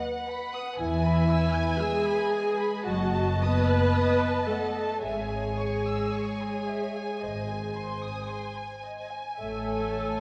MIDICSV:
0, 0, Header, 1, 6, 480
1, 0, Start_track
1, 0, Key_signature, 4, "minor"
1, 0, Tempo, 1008403
1, 378, Time_signature, 4, 2, 24, 8
1, 860, Tempo, 1056338
1, 1340, Tempo, 1096892
1, 3260, Tempo, 1063830
1, 4592, End_track
2, 0, Start_track
2, 0, Title_t, "Violin section"
2, 0, Program_c, 0, 48
2, 0, Note_on_c, 0, 71, 69
2, 16, Note_on_c, 0, 78, 59
2, 137, Note_off_c, 0, 78, 0
2, 139, Note_on_c, 0, 83, 67
2, 256, Note_on_c, 0, 87, 71
2, 259, Note_off_c, 0, 83, 0
2, 375, Note_on_c, 0, 80, 74
2, 377, Note_off_c, 0, 87, 0
2, 488, Note_off_c, 0, 80, 0
2, 499, Note_on_c, 0, 83, 66
2, 618, Note_on_c, 0, 88, 70
2, 619, Note_off_c, 0, 83, 0
2, 736, Note_on_c, 0, 92, 63
2, 739, Note_off_c, 0, 88, 0
2, 858, Note_on_c, 0, 88, 63
2, 859, Note_off_c, 0, 92, 0
2, 975, Note_on_c, 0, 83, 60
2, 976, Note_off_c, 0, 88, 0
2, 1094, Note_off_c, 0, 83, 0
2, 1094, Note_on_c, 0, 80, 64
2, 1215, Note_off_c, 0, 80, 0
2, 1216, Note_on_c, 0, 83, 60
2, 1341, Note_off_c, 0, 71, 0
2, 1341, Note_off_c, 0, 83, 0
2, 1341, Note_on_c, 0, 75, 67
2, 1342, Note_on_c, 0, 78, 66
2, 1456, Note_off_c, 0, 78, 0
2, 1463, Note_on_c, 0, 81, 59
2, 1585, Note_off_c, 0, 81, 0
2, 1587, Note_on_c, 0, 87, 61
2, 1707, Note_off_c, 0, 87, 0
2, 1707, Note_on_c, 0, 90, 56
2, 1820, Note_on_c, 0, 87, 58
2, 1824, Note_off_c, 0, 90, 0
2, 1936, Note_on_c, 0, 81, 54
2, 1938, Note_off_c, 0, 87, 0
2, 2054, Note_off_c, 0, 81, 0
2, 2057, Note_on_c, 0, 78, 54
2, 2169, Note_on_c, 0, 81, 57
2, 2173, Note_off_c, 0, 78, 0
2, 2274, Note_off_c, 0, 75, 0
2, 2285, Note_on_c, 0, 73, 59
2, 2285, Note_on_c, 0, 76, 58
2, 2290, Note_off_c, 0, 81, 0
2, 2400, Note_off_c, 0, 76, 0
2, 2407, Note_on_c, 0, 80, 52
2, 2531, Note_off_c, 0, 80, 0
2, 2532, Note_on_c, 0, 85, 50
2, 2655, Note_off_c, 0, 85, 0
2, 2657, Note_on_c, 0, 88, 54
2, 2775, Note_on_c, 0, 85, 48
2, 2780, Note_off_c, 0, 88, 0
2, 2894, Note_on_c, 0, 80, 45
2, 2899, Note_off_c, 0, 85, 0
2, 3012, Note_on_c, 0, 76, 43
2, 3019, Note_off_c, 0, 80, 0
2, 3131, Note_on_c, 0, 80, 48
2, 3137, Note_off_c, 0, 76, 0
2, 3239, Note_off_c, 0, 73, 0
2, 3247, Note_on_c, 0, 72, 45
2, 3247, Note_on_c, 0, 75, 49
2, 3255, Note_off_c, 0, 80, 0
2, 3366, Note_off_c, 0, 75, 0
2, 3370, Note_on_c, 0, 80, 45
2, 3490, Note_on_c, 0, 84, 46
2, 3497, Note_off_c, 0, 80, 0
2, 3611, Note_on_c, 0, 87, 42
2, 3618, Note_off_c, 0, 84, 0
2, 3732, Note_on_c, 0, 84, 42
2, 3739, Note_off_c, 0, 87, 0
2, 3855, Note_on_c, 0, 80, 42
2, 3859, Note_off_c, 0, 84, 0
2, 3977, Note_on_c, 0, 75, 42
2, 3982, Note_off_c, 0, 80, 0
2, 4095, Note_on_c, 0, 80, 46
2, 4103, Note_off_c, 0, 75, 0
2, 4128, Note_off_c, 0, 72, 0
2, 4221, Note_off_c, 0, 80, 0
2, 4221, Note_on_c, 0, 76, 52
2, 4224, Note_on_c, 0, 73, 50
2, 4335, Note_off_c, 0, 76, 0
2, 4342, Note_on_c, 0, 80, 48
2, 4462, Note_off_c, 0, 80, 0
2, 4463, Note_on_c, 0, 81, 47
2, 4580, Note_off_c, 0, 81, 0
2, 4592, Note_off_c, 0, 73, 0
2, 4592, End_track
3, 0, Start_track
3, 0, Title_t, "Violin section"
3, 0, Program_c, 1, 48
3, 0, Note_on_c, 1, 78, 70
3, 359, Note_off_c, 1, 78, 0
3, 382, Note_on_c, 1, 80, 82
3, 1337, Note_on_c, 1, 81, 69
3, 1342, Note_off_c, 1, 80, 0
3, 2272, Note_off_c, 1, 81, 0
3, 2292, Note_on_c, 1, 80, 59
3, 4592, Note_off_c, 1, 80, 0
3, 4592, End_track
4, 0, Start_track
4, 0, Title_t, "Viola section"
4, 0, Program_c, 2, 48
4, 377, Note_on_c, 2, 64, 106
4, 841, Note_off_c, 2, 64, 0
4, 854, Note_on_c, 2, 68, 106
4, 1333, Note_on_c, 2, 66, 89
4, 1337, Note_off_c, 2, 68, 0
4, 1581, Note_on_c, 2, 71, 103
4, 1582, Note_off_c, 2, 66, 0
4, 2049, Note_on_c, 2, 69, 80
4, 2053, Note_off_c, 2, 71, 0
4, 2288, Note_off_c, 2, 69, 0
4, 2292, Note_on_c, 2, 68, 89
4, 3727, Note_off_c, 2, 68, 0
4, 4227, Note_on_c, 2, 69, 83
4, 4592, Note_off_c, 2, 69, 0
4, 4592, End_track
5, 0, Start_track
5, 0, Title_t, "Cello section"
5, 0, Program_c, 3, 48
5, 375, Note_on_c, 3, 52, 85
5, 840, Note_off_c, 3, 52, 0
5, 858, Note_on_c, 3, 56, 77
5, 1338, Note_on_c, 3, 54, 75
5, 1339, Note_off_c, 3, 56, 0
5, 1582, Note_on_c, 3, 59, 90
5, 1584, Note_off_c, 3, 54, 0
5, 2045, Note_off_c, 3, 59, 0
5, 2056, Note_on_c, 3, 57, 66
5, 2291, Note_off_c, 3, 57, 0
5, 2291, Note_on_c, 3, 56, 64
5, 3727, Note_off_c, 3, 56, 0
5, 4230, Note_on_c, 3, 57, 69
5, 4592, Note_off_c, 3, 57, 0
5, 4592, End_track
6, 0, Start_track
6, 0, Title_t, "Double bass section"
6, 0, Program_c, 4, 48
6, 375, Note_on_c, 4, 40, 81
6, 778, Note_off_c, 4, 40, 0
6, 1338, Note_on_c, 4, 30, 82
6, 1743, Note_off_c, 4, 30, 0
6, 2287, Note_on_c, 4, 32, 57
6, 2695, Note_off_c, 4, 32, 0
6, 3258, Note_on_c, 4, 32, 62
6, 3664, Note_off_c, 4, 32, 0
6, 4228, Note_on_c, 4, 33, 49
6, 4592, Note_off_c, 4, 33, 0
6, 4592, End_track
0, 0, End_of_file